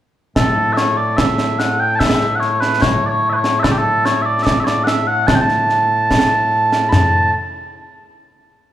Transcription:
0.36 7.31 A2 medium
0.36 7.31 A3 medium
0.36 0.73 A4 medium
0.36 concert bass drum medium
0.36 snare medium
0.73 0.97 C#5 medium
0.73 0.77 E5 medium
0.77 snare medium
0.97 1.17 D5 medium
1.17 1.59 E5 medium
1.17 concert bass drum soft
1.17 snare loud
1.38 snare medium
1.59 1.80 F#5 medium
1.59 snare medium
1.80 1.95 G5 medium
1.95 2.35 E5 medium
1.95 1.99 A5 medium
2.00 concert bass drum medium
2.00 snare loud
2.21 snare soft
2.35 2.40 F#5 medium
2.40 2.61 C#5 medium
2.40 snare soft
2.61 2.82 B4 medium
2.61 snare medium
2.82 3.06 C#5 medium
2.82 concert bass drum medium
2.82 snare loud
3.06 3.29 C#5 medium
3.06 3.08 D5 medium
3.29 3.36 B4 medium
3.29 3.33 E5 medium
3.36 3.59 C#5 medium
3.44 snare medium
3.59 3.72 A4 medium
3.59 3.63 E5 medium
3.64 concert bass drum medium
3.64 snare loud
3.72 3.78 G4 medium
3.78 4.05 A4 medium
4.05 4.22 C#5 medium
4.05 snare medium
4.22 4.43 D5 medium
4.22 4.26 E5 medium
4.43 4.60 D5 medium
4.43 4.45 E5 medium
4.43 concert bass drum medium
4.43 snare medium
4.60 4.64 E5 medium
4.64 4.66 C#5 medium
4.64 4.84 D5 medium
4.64 snare medium
4.84 5.07 E5 medium
4.84 4.87 F#5 medium
4.84 snare medium
5.07 5.27 F#5 loud
5.27 5.35 A5 medium
5.27 concert bass drum medium
5.27 snare loud
5.35 5.41 G5 medium
5.41 6.89 A5 loud
5.49 snare soft
5.69 snare soft
6.11 concert bass drum medium
6.11 snare loud
6.72 snare medium
6.89 7.31 A5 medium
6.89 6.93 B5 medium
6.89 snare medium
6.89 mid tom loud

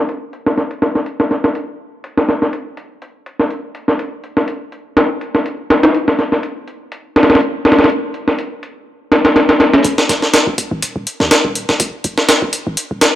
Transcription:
0.09 closed hi-hat medium
0.33 closed hi-hat medium
0.46 snare soft
0.58 snare soft
0.58 closed hi-hat medium
0.71 closed hi-hat medium
0.82 snare soft
0.95 snare soft
0.95 closed hi-hat medium
1.06 closed hi-hat medium
1.20 snare soft
1.31 snare soft
1.31 closed hi-hat medium
1.44 snare soft
1.55 closed hi-hat medium
2.04 closed hi-hat medium
2.17 snare soft
2.29 snare soft
2.29 closed hi-hat medium
2.42 snare soft
2.53 closed hi-hat medium
2.77 closed hi-hat medium
3.02 closed hi-hat medium
3.26 closed hi-hat medium
3.40 snare soft
3.51 closed hi-hat medium
3.75 closed hi-hat medium
3.88 snare soft
3.99 closed hi-hat medium
4.24 closed hi-hat medium
4.37 snare soft
4.48 closed hi-hat medium
4.72 closed hi-hat medium
4.97 snare loud
4.97 closed hi-hat medium
5.21 closed hi-hat medium
5.35 snare soft
5.46 closed hi-hat medium
5.70 snare loud
5.70 closed hi-hat medium
5.83 snare medium
5.83 closed hi-hat medium
5.95 closed hi-hat medium
6.08 snare soft
6.19 snare soft
6.19 closed hi-hat medium
6.32 snare soft
6.43 closed hi-hat medium
6.68 closed hi-hat medium
6.92 closed hi-hat medium
7.16 snare medium
7.16 closed hi-hat medium
7.23 snare medium
7.23 closed hi-hat medium
7.30 snare medium
7.30 closed hi-hat medium
7.35 snare medium
7.35 closed hi-hat medium
7.41 closed hi-hat medium
7.65 snare medium
7.65 closed hi-hat medium
7.72 snare medium
7.72 closed hi-hat medium
7.79 snare medium
7.79 closed hi-hat medium
7.84 snare medium
7.84 closed hi-hat medium
7.90 closed hi-hat medium
8.14 closed hi-hat medium
8.28 snare soft
8.39 closed hi-hat medium
8.63 closed hi-hat medium
9.12 snare medium
9.12 closed hi-hat medium
9.25 snare medium
9.25 closed hi-hat medium
9.36 snare medium
9.36 closed hi-hat medium
9.49 snare loud
9.49 closed hi-hat medium
9.60 snare loud
9.60 closed hi-hat medium
9.73 snare loud
9.73 closed hi-hat medium
9.85 9.96 F1 loud
9.85 kick loud
9.85 closed hi-hat medium
9.98 snare medium
10.09 10.20 F1 medium
10.09 snare soft
10.09 closed hi-hat medium
10.22 snare soft
10.34 snare loud
10.34 closed hi-hat medium
10.47 10.56 F1 medium
10.47 kick medium
10.58 kick medium
10.58 closed hi-hat medium
10.71 10.80 G#1 medium
10.82 10.93 D#1 soft
10.82 closed hi-hat medium
10.96 11.05 D#1 medium
11.07 closed hi-hat medium
11.20 11.29 D#2 medium
11.20 snare soft
11.31 snare loud
11.31 closed hi-hat medium
11.45 11.64 D#1 medium
11.45 kick medium
11.55 closed hi-hat medium
11.69 11.78 F1 medium
11.69 snare soft
11.80 11.91 F1 loud
11.80 kick loud
11.80 closed hi-hat medium
12.04 12.15 F1 medium
12.04 closed hi-hat medium
12.18 snare soft
12.29 snare loud
12.29 closed hi-hat medium
12.42 12.51 F1 medium
12.42 kick medium
12.53 closed hi-hat medium
12.67 12.76 G#1 medium
12.77 closed hi-hat medium
12.91 13.00 D#1 medium
13.01 snare medium
13.01 closed hi-hat medium

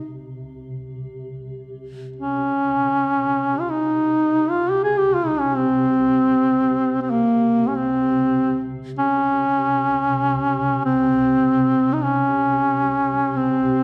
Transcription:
0.00 13.84 C3 soft
0.00 0.15 D#4 medium
2.16 3.62 C#4 medium
3.60 3.71 F4 soft
3.70 4.51 D#4 medium
4.50 4.72 F4 medium
4.71 4.83 G4 medium
4.84 5.00 G#4 medium
4.99 5.16 G4 medium
5.15 5.28 F4 medium
5.27 5.41 D#4 medium
5.39 5.58 C#4 medium
5.57 7.01 C4 medium
7.02 7.12 C4 soft
7.10 7.70 A#3 medium
7.69 7.77 C#4 soft
7.76 8.67 C4 medium
8.98 10.80 C#4 medium
10.85 11.95 C4 medium
11.93 12.05 D#4 soft
12.03 13.38 C#4 medium
13.37 13.84 C4 medium

